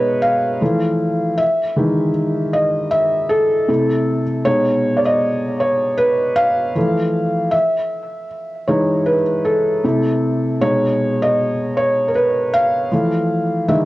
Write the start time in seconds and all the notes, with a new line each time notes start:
Already playing: B2 G#3 D#4 B4 C#5 D#5 E5
0.22 F5
0.61 E3 F3 A3
1.38 E5
1.76 D#3 E3 G#3
2.53 D#5
2.91 E5
3.29 A4
3.68 C3 A3 E4
4.45 B2 G#3 D#4 C#5
4.97 D5
5.05 D#5
5.60 C#5
5.97 B4
6.36 F5
6.75 E3 F3 A3
7.51 E5
8.68 E3 G#3 D#4 C#5
9.06 B4
9.45 A4
9.84 C3 A3 E4
10.61 B2 G#3 D#4 C#5
11.22 D#5
11.77 C#5
12.08 A#4
12.15 B4
12.53 F5
12.91 E3 F3 A3
13.68 D#3 E3 G#3 E5